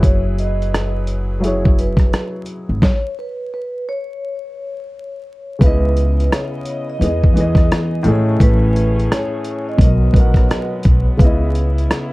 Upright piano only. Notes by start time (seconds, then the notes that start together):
Already playing: F#3 E4 G#4 B4
1.40 F#3 E4
1.45 G#4 C#5
5.59 C#3 B3
5.64 E4 D#5
6.99 E3 B3
7.03 G#4 D#5
7.33 E3 B3
7.38 G#4 D#5
8.03 A2 A3
8.08 G#4 C#5
9.77 B2 F#3
9.82 A#4 D#5
10.13 F#3 B3
10.17 A#4 F#5
11.17 C#3 B3
11.22 E4 D#5